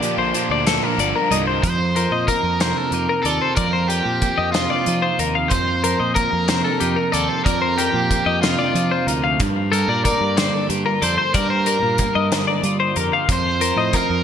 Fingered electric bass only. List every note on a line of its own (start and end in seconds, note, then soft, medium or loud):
0.18 0.32 A#1 medium
0.50 0.78 D2 medium
0.98 1.12 G1 medium
1.31 1.59 C2 medium
1.63 2.06 F2 medium
2.11 2.25 A#2 medium
2.43 2.72 F2 medium
2.92 3.06 F2 medium
3.24 3.39 D#2 medium
3.57 4.00 F2 medium
4.05 4.20 A#2 medium
4.38 4.66 F2 medium
4.87 5.01 F3 medium
5.19 5.51 D#2 medium
5.51 5.94 F2 medium
6.00 6.14 A#2 medium
6.33 6.61 F2 medium
6.81 6.95 F2 medium
7.14 7.28 D#2 medium
7.46 7.88 F2 medium
7.94 8.08 A#2 medium
8.26 8.55 F2 medium
8.74 8.89 F3 medium
9.07 9.40 D2 medium
9.40 9.83 G2 medium
9.88 10.03 A#2 medium
10.21 10.49 G2 medium
10.70 10.84 G2 medium
11.02 11.16 F2 medium
11.35 11.77 G2 medium
11.83 11.97 A#2 medium
12.15 12.44 G2 medium
12.63 12.78 G3 medium
12.96 13.11 F2 medium
13.29 13.71 F2 medium
13.76 13.91 A2 medium
14.10 14.23 F2 medium